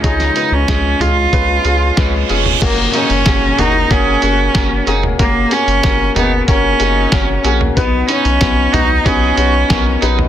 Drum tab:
CC |----------------|x---------------|----------------|----------------|
HH |xxx-x-x-x-x-x-x-|x-xxx-x-x-x-x-x-|x-xxx-x-x-x-x-x-|x-xxx-x-x-x-x-x-|
SD |-o--o-------o---|----o-------o---|----o-------o---|----o-------o---|
FT |------o--------o|------o--------o|------o--------o|------o--------o|
BD |o---o---o---o---|o---o---o---o---|o---o---o---o---|o---o---o---o---|